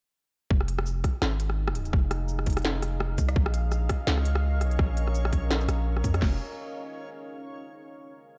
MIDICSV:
0, 0, Header, 1, 5, 480
1, 0, Start_track
1, 0, Key_signature, -4, "minor"
1, 0, Tempo, 357143
1, 680, Time_signature, 4, 2, 24, 8
1, 11264, End_track
2, 0, Start_track
2, 0, Title_t, "Ambient pad"
2, 0, Program_c, 0, 92
2, 676, Note_on_c, 0, 63, 86
2, 848, Note_on_c, 0, 77, 92
2, 1076, Note_on_c, 0, 68, 94
2, 1366, Note_on_c, 0, 75, 83
2, 4514, Note_on_c, 0, 61, 79
2, 4627, Note_on_c, 0, 70, 95
2, 5922, Note_off_c, 0, 68, 0
2, 6068, Note_off_c, 0, 63, 0
2, 8358, Note_off_c, 0, 61, 0
2, 8360, Note_off_c, 0, 70, 0
2, 8362, Note_off_c, 0, 75, 0
2, 8362, Note_off_c, 0, 77, 0
2, 8364, Note_on_c, 0, 63, 79
2, 8443, Note_on_c, 0, 68, 80
2, 8522, Note_on_c, 0, 72, 80
2, 8589, Note_on_c, 0, 77, 80
2, 10227, Note_off_c, 0, 68, 0
2, 10228, Note_off_c, 0, 63, 0
2, 10229, Note_off_c, 0, 72, 0
2, 10231, Note_off_c, 0, 77, 0
2, 11264, End_track
3, 0, Start_track
3, 0, Title_t, "Synth texture"
3, 0, Program_c, 1, 99
3, 4512, Note_on_c, 1, 73, 85
3, 4519, Note_on_c, 1, 61, 85
3, 8367, Note_off_c, 1, 73, 0
3, 8371, Note_off_c, 1, 61, 0
3, 11264, End_track
4, 0, Start_track
4, 0, Title_t, "808-style bass"
4, 0, Program_c, 2, 38
4, 680, Note_on_c, 2, 29, 99
4, 1384, Note_off_c, 2, 29, 0
4, 1639, Note_on_c, 2, 32, 98
4, 2584, Note_off_c, 2, 32, 0
4, 2596, Note_on_c, 2, 29, 98
4, 3302, Note_off_c, 2, 29, 0
4, 3315, Note_on_c, 2, 29, 94
4, 4261, Note_off_c, 2, 29, 0
4, 4276, Note_on_c, 2, 36, 99
4, 4502, Note_off_c, 2, 36, 0
4, 4515, Note_on_c, 2, 34, 99
4, 5221, Note_off_c, 2, 34, 0
4, 5475, Note_on_c, 2, 37, 102
4, 6147, Note_off_c, 2, 37, 0
4, 6147, Note_on_c, 2, 36, 102
4, 6421, Note_off_c, 2, 36, 0
4, 6437, Note_on_c, 2, 34, 101
4, 7142, Note_off_c, 2, 34, 0
4, 7159, Note_on_c, 2, 34, 94
4, 7624, Note_off_c, 2, 34, 0
4, 7638, Note_on_c, 2, 34, 98
4, 8103, Note_off_c, 2, 34, 0
4, 8118, Note_on_c, 2, 41, 99
4, 8343, Note_off_c, 2, 41, 0
4, 8359, Note_on_c, 2, 29, 99
4, 8583, Note_off_c, 2, 29, 0
4, 11264, End_track
5, 0, Start_track
5, 0, Title_t, "Drums"
5, 679, Note_on_c, 9, 36, 122
5, 814, Note_off_c, 9, 36, 0
5, 814, Note_on_c, 9, 37, 57
5, 918, Note_on_c, 9, 42, 83
5, 949, Note_off_c, 9, 37, 0
5, 1052, Note_off_c, 9, 42, 0
5, 1055, Note_on_c, 9, 37, 80
5, 1157, Note_on_c, 9, 82, 69
5, 1190, Note_off_c, 9, 37, 0
5, 1292, Note_off_c, 9, 82, 0
5, 1398, Note_on_c, 9, 36, 62
5, 1400, Note_on_c, 9, 37, 58
5, 1400, Note_on_c, 9, 42, 71
5, 1532, Note_off_c, 9, 36, 0
5, 1534, Note_off_c, 9, 37, 0
5, 1534, Note_off_c, 9, 42, 0
5, 1637, Note_on_c, 9, 37, 82
5, 1637, Note_on_c, 9, 38, 118
5, 1771, Note_off_c, 9, 37, 0
5, 1771, Note_off_c, 9, 38, 0
5, 1879, Note_on_c, 9, 42, 82
5, 2010, Note_on_c, 9, 37, 55
5, 2013, Note_off_c, 9, 42, 0
5, 2145, Note_off_c, 9, 37, 0
5, 2251, Note_on_c, 9, 37, 86
5, 2354, Note_on_c, 9, 42, 70
5, 2386, Note_off_c, 9, 37, 0
5, 2488, Note_off_c, 9, 42, 0
5, 2491, Note_on_c, 9, 42, 39
5, 2491, Note_on_c, 9, 82, 39
5, 2594, Note_on_c, 9, 37, 54
5, 2596, Note_on_c, 9, 36, 124
5, 2626, Note_off_c, 9, 42, 0
5, 2626, Note_off_c, 9, 82, 0
5, 2729, Note_off_c, 9, 37, 0
5, 2730, Note_off_c, 9, 36, 0
5, 2834, Note_on_c, 9, 37, 80
5, 2834, Note_on_c, 9, 42, 85
5, 2969, Note_off_c, 9, 37, 0
5, 2969, Note_off_c, 9, 42, 0
5, 3070, Note_on_c, 9, 82, 65
5, 3204, Note_off_c, 9, 82, 0
5, 3210, Note_on_c, 9, 37, 56
5, 3312, Note_on_c, 9, 42, 68
5, 3316, Note_on_c, 9, 36, 67
5, 3344, Note_off_c, 9, 37, 0
5, 3359, Note_off_c, 9, 42, 0
5, 3359, Note_on_c, 9, 42, 56
5, 3396, Note_off_c, 9, 42, 0
5, 3396, Note_on_c, 9, 42, 47
5, 3450, Note_off_c, 9, 36, 0
5, 3452, Note_off_c, 9, 42, 0
5, 3452, Note_on_c, 9, 37, 80
5, 3452, Note_on_c, 9, 42, 37
5, 3475, Note_off_c, 9, 42, 0
5, 3475, Note_on_c, 9, 42, 30
5, 3521, Note_off_c, 9, 42, 0
5, 3521, Note_on_c, 9, 42, 25
5, 3557, Note_on_c, 9, 38, 120
5, 3586, Note_off_c, 9, 37, 0
5, 3655, Note_off_c, 9, 42, 0
5, 3691, Note_off_c, 9, 38, 0
5, 3796, Note_on_c, 9, 37, 56
5, 3796, Note_on_c, 9, 42, 84
5, 3931, Note_off_c, 9, 37, 0
5, 3931, Note_off_c, 9, 42, 0
5, 4037, Note_on_c, 9, 37, 83
5, 4171, Note_off_c, 9, 37, 0
5, 4275, Note_on_c, 9, 42, 72
5, 4275, Note_on_c, 9, 82, 68
5, 4276, Note_on_c, 9, 36, 66
5, 4410, Note_off_c, 9, 36, 0
5, 4410, Note_off_c, 9, 42, 0
5, 4410, Note_off_c, 9, 82, 0
5, 4416, Note_on_c, 9, 37, 56
5, 4416, Note_on_c, 9, 42, 40
5, 4516, Note_on_c, 9, 36, 127
5, 4550, Note_off_c, 9, 37, 0
5, 4550, Note_off_c, 9, 42, 0
5, 4650, Note_off_c, 9, 36, 0
5, 4650, Note_on_c, 9, 37, 83
5, 4755, Note_on_c, 9, 42, 83
5, 4785, Note_off_c, 9, 37, 0
5, 4889, Note_off_c, 9, 42, 0
5, 4995, Note_on_c, 9, 37, 53
5, 4995, Note_on_c, 9, 82, 66
5, 5129, Note_off_c, 9, 37, 0
5, 5129, Note_off_c, 9, 82, 0
5, 5233, Note_on_c, 9, 37, 78
5, 5233, Note_on_c, 9, 42, 71
5, 5236, Note_on_c, 9, 36, 68
5, 5368, Note_off_c, 9, 37, 0
5, 5368, Note_off_c, 9, 42, 0
5, 5370, Note_off_c, 9, 36, 0
5, 5471, Note_on_c, 9, 38, 127
5, 5605, Note_off_c, 9, 38, 0
5, 5611, Note_on_c, 9, 37, 51
5, 5717, Note_on_c, 9, 42, 84
5, 5745, Note_off_c, 9, 37, 0
5, 5851, Note_off_c, 9, 42, 0
5, 5852, Note_on_c, 9, 37, 80
5, 5986, Note_off_c, 9, 37, 0
5, 6197, Note_on_c, 9, 37, 53
5, 6197, Note_on_c, 9, 42, 69
5, 6331, Note_off_c, 9, 37, 0
5, 6331, Note_off_c, 9, 42, 0
5, 6334, Note_on_c, 9, 42, 38
5, 6438, Note_on_c, 9, 36, 127
5, 6438, Note_on_c, 9, 37, 78
5, 6468, Note_off_c, 9, 42, 0
5, 6572, Note_off_c, 9, 36, 0
5, 6572, Note_off_c, 9, 37, 0
5, 6680, Note_on_c, 9, 42, 78
5, 6814, Note_off_c, 9, 42, 0
5, 6820, Note_on_c, 9, 37, 48
5, 6919, Note_on_c, 9, 82, 68
5, 6954, Note_off_c, 9, 37, 0
5, 7053, Note_off_c, 9, 82, 0
5, 7057, Note_on_c, 9, 37, 75
5, 7158, Note_on_c, 9, 42, 68
5, 7159, Note_on_c, 9, 36, 64
5, 7191, Note_off_c, 9, 37, 0
5, 7292, Note_off_c, 9, 42, 0
5, 7293, Note_off_c, 9, 36, 0
5, 7399, Note_on_c, 9, 37, 51
5, 7399, Note_on_c, 9, 38, 123
5, 7534, Note_off_c, 9, 37, 0
5, 7534, Note_off_c, 9, 38, 0
5, 7538, Note_on_c, 9, 82, 35
5, 7641, Note_on_c, 9, 37, 76
5, 7641, Note_on_c, 9, 42, 81
5, 7672, Note_off_c, 9, 82, 0
5, 7776, Note_off_c, 9, 37, 0
5, 7776, Note_off_c, 9, 42, 0
5, 8018, Note_on_c, 9, 37, 54
5, 8119, Note_on_c, 9, 36, 66
5, 8119, Note_on_c, 9, 42, 67
5, 8119, Note_on_c, 9, 82, 66
5, 8152, Note_off_c, 9, 37, 0
5, 8253, Note_off_c, 9, 36, 0
5, 8253, Note_off_c, 9, 42, 0
5, 8253, Note_off_c, 9, 82, 0
5, 8255, Note_on_c, 9, 37, 78
5, 8255, Note_on_c, 9, 42, 39
5, 8359, Note_on_c, 9, 36, 108
5, 8359, Note_on_c, 9, 38, 104
5, 8359, Note_on_c, 9, 49, 91
5, 8389, Note_off_c, 9, 37, 0
5, 8389, Note_off_c, 9, 42, 0
5, 8493, Note_off_c, 9, 36, 0
5, 8493, Note_off_c, 9, 38, 0
5, 8493, Note_off_c, 9, 49, 0
5, 11264, End_track
0, 0, End_of_file